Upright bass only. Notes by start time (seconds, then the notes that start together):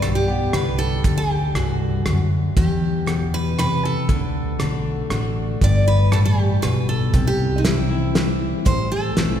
0.03 B1
0.53 C2
1.04 D2
1.54 C2
2.05 D2
2.57 E2
4.09 D2
4.60 B1
5.10 A1
5.62 G1
6.12 A1
6.63 B1
7.14 C2
8.66 A1
9.18 B1